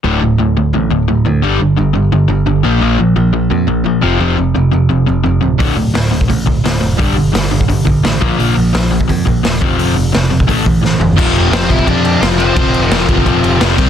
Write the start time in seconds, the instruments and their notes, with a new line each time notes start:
0.04 picked electric bass D1, overdriven electric guitar D2 A2 D3
0.21 picked electric bass D1, overdriven electric guitar D2 A2
0.38 picked electric bass D1, overdriven electric guitar D2 A2
0.57 overdriven electric guitar D2 A2
0.73 picked electric bass A1, overdriven electric guitar D2 A2
0.91 picked electric bass D1, overdriven electric guitar D2 A2
1.08 picked electric bass D1, overdriven electric guitar D2 A2
1.25 overdriven electric guitar D2 A2, picked electric bass D2
1.42 picked electric bass G1, overdriven electric guitar G2 D3 G3
1.59 picked electric bass G1, overdriven electric guitar G2 D3
1.77 picked electric bass G1, overdriven electric guitar G2 D3
1.93 picked electric bass G1, overdriven electric guitar G2 D3
2.12 picked electric bass G1, overdriven electric guitar G2 D3
2.28 picked electric bass G1, overdriven electric guitar G2 D3
2.46 picked electric bass G1, overdriven electric guitar G2 D3
2.63 picked electric bass A#1, overdriven electric guitar A#2 F3 A#3
2.81 picked electric bass A#1, overdriven electric guitar A#2 F3 A#3
2.99 picked electric bass A#1, overdriven electric guitar A#2 F3
3.16 picked electric bass A#1, overdriven electric guitar A#2 F3
3.33 overdriven electric guitar A#2 F3
3.51 picked electric bass F2, overdriven electric guitar A#2 F3
3.68 picked electric bass A#1, overdriven electric guitar A#2 F3
3.85 picked electric bass A#1, overdriven electric guitar A#2 F3
4.01 picked electric bass F1, overdriven electric guitar F2 C3 F3
4.19 picked electric bass F1, overdriven electric guitar F2 C3 F3
4.37 picked electric bass F1, overdriven electric guitar F2 C3
4.55 picked electric bass F1, overdriven electric guitar F2 C3
4.71 picked electric bass F1, overdriven electric guitar F2 C3
4.89 picked electric bass F1, overdriven electric guitar F2 C3
5.06 picked electric bass F1, overdriven electric guitar F2 C3
5.24 picked electric bass F1, overdriven electric guitar F2 C3
5.41 picked electric bass D1, overdriven electric guitar F2 C3
5.59 picked electric bass D1, overdriven electric guitar D2 A2 D3, kick, open hi-hat
5.76 picked electric bass D1, overdriven electric guitar D2 A2
5.94 picked electric bass D1, overdriven electric guitar D2 A2, snare, open hi-hat
6.11 overdriven electric guitar D2 A2
6.21 kick
6.28 picked electric bass A1, overdriven electric guitar D2 A2, kick, open hi-hat
6.46 picked electric bass D1, overdriven electric guitar D2 A2, kick
6.64 picked electric bass D1, overdriven electric guitar D2 A2, snare, open hi-hat
6.81 picked electric bass F1, overdriven electric guitar D2 A2
6.98 picked electric bass G1, overdriven electric guitar G2 D3 G3, kick, open hi-hat
7.16 picked electric bass G1, overdriven electric guitar G2 D3
7.33 picked electric bass G1, overdriven electric guitar G2 D3, snare, open hi-hat
7.51 picked electric bass G1, overdriven electric guitar G2 D3
7.61 kick
7.68 picked electric bass G1, overdriven electric guitar G2 D3, kick, open hi-hat
7.85 picked electric bass G1, overdriven electric guitar G2 D3, kick
8.03 picked electric bass A1, overdriven electric guitar G2 D3, snare, open hi-hat
8.21 picked electric bass A#1, overdriven electric guitar A#2 F3 A#3, kick
8.38 picked electric bass A#1, overdriven electric guitar A#2 F3 A#3, open hi-hat
8.55 picked electric bass A#1, overdriven electric guitar A#2 F3
8.73 picked electric bass A#1, overdriven electric guitar A#2 F3, snare, open hi-hat
8.91 overdriven electric guitar A#2 F3
9.01 kick
9.08 picked electric bass F2, overdriven electric guitar A#2 F3, kick, open hi-hat
9.25 picked electric bass A#1, overdriven electric guitar A#2 F3, kick
9.43 picked electric bass E1, overdriven electric guitar A#2 F3, snare, open hi-hat
9.61 picked electric bass F1, overdriven electric guitar F2 C3 F3, kick
9.77 picked electric bass F1, overdriven electric guitar F2 C3 F3, open hi-hat
9.96 picked electric bass F1, overdriven electric guitar F2 C3
10.12 picked electric bass F1, overdriven electric guitar F2 C3, snare, open hi-hat
10.30 picked electric bass F1, overdriven electric guitar F2 C3
10.40 kick
10.47 picked electric bass A1, overdriven electric guitar A2 E3 A3, kick, open hi-hat
10.65 picked electric bass A1, overdriven electric guitar A2 E3, kick
10.83 picked electric bass A1, overdriven electric guitar A2 E3, snare
11.00 picked electric bass G1, overdriven electric guitar A2 E3, floor tom
11.17 picked electric bass F1, overdriven electric guitar F2 C3 F3, kick, crash
11.36 crash
11.51 picked electric bass F1, overdriven electric guitar F2 C3 F3, lead electric guitar C4, snare, crash
11.55 lead electric guitar C5
11.68 picked electric bass C2, overdriven electric guitar F2 C3 F3, lead electric guitar E4 E5, kick, crash
11.79 kick
11.86 overdriven electric guitar F2 C3 F3, picked electric bass F2, lead electric guitar D4 D5, kick, crash
12.05 crash
12.20 picked electric bass F1, overdriven electric guitar F2 C3 F3, lead electric guitar C4 C5, snare, crash
12.38 overdriven electric guitar F2 C3 F3, lead electric guitar C4 C5, crash
12.55 overdriven electric guitar F2 C3 F3, kick, crash
12.72 picked electric bass F1, crash
12.88 picked electric bass F1, overdriven electric guitar F2 C3 F3, lead electric guitar A#4, snare, crash
13.07 picked electric bass F1, overdriven electric guitar F2 C3 F3, kick, crash
13.17 kick
13.25 picked electric bass F1, overdriven electric guitar F2 C3 F3, kick, crash
13.43 picked electric bass F1, crash
13.59 picked electric bass F1, overdriven electric guitar F2 C3 F3, snare, crash
13.77 picked electric bass C2, overdriven electric guitar C3 G3 C4, kick, crash